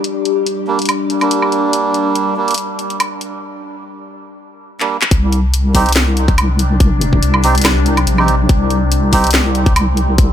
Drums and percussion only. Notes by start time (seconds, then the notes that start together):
0.04 closed hi-hat
0.25 closed hi-hat
0.46 closed hi-hat
0.79 closed hi-hat
0.82 closed hi-hat
0.86 closed hi-hat
0.89 closed hi-hat, low woodblock
1.10 closed hi-hat
1.21 closed hi-hat, low woodblock
1.31 closed hi-hat
1.42 low woodblock
1.52 closed hi-hat
1.73 closed hi-hat
1.94 closed hi-hat
2.15 closed hi-hat
2.48 closed hi-hat
2.51 closed hi-hat
2.54 closed hi-hat
2.58 closed hi-hat
2.79 closed hi-hat
2.90 closed hi-hat
3.00 closed hi-hat, low woodblock
3.21 closed hi-hat
4.80 clap
5.02 clap
5.11 kick, closed hi-hat
5.33 closed hi-hat
5.54 closed hi-hat
5.75 kick, open hi-hat
5.86 closed hi-hat
5.89 closed hi-hat
5.92 snare, clap, closed hi-hat
5.96 closed hi-hat
6.17 closed hi-hat
6.28 kick, closed hi-hat
6.38 closed hi-hat, low woodblock
6.59 closed hi-hat
6.80 kick, closed hi-hat
7.01 closed hi-hat
7.13 kick
7.23 closed hi-hat
7.34 low woodblock
7.44 open hi-hat
7.55 closed hi-hat
7.58 closed hi-hat
7.62 snare, clap, closed hi-hat
7.65 closed hi-hat, low woodblock
7.86 closed hi-hat
7.97 closed hi-hat, low woodblock
8.07 closed hi-hat
8.18 low woodblock
8.28 closed hi-hat
8.49 kick, closed hi-hat
8.70 closed hi-hat
8.92 closed hi-hat
9.13 kick, open hi-hat
9.24 closed hi-hat
9.27 closed hi-hat
9.31 snare, clap, closed hi-hat
9.34 closed hi-hat
9.55 closed hi-hat
9.66 kick, closed hi-hat
9.76 closed hi-hat, low woodblock
9.97 closed hi-hat
10.18 kick, closed hi-hat